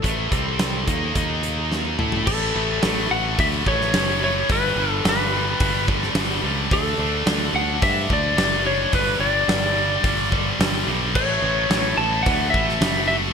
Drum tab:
CC |----------------|x---------------|----------------|----------------|
HH |x-x-x-x-x-x-----|----o---o---o---|o---o---o---o---|o---o---o---o---|
SD |----o-------o---|----o------oo---|----o------oo---|----o-------o---|
T2 |--------------o-|----------------|----------------|----------------|
FT |---------------o|----------------|----------------|----------------|
BD |o-o---o-o-------|o-------o-o-----|o-------o-o-----|o-------o-o-----|

CC |----------------|x---------------|
HH |o---o---o---o---|----o---o---o---|
SD |----o-------o---|----o------oo---|
T2 |----------------|----------------|
FT |----------------|----------------|
BD |o-------o-o-----|o-------o-o-----|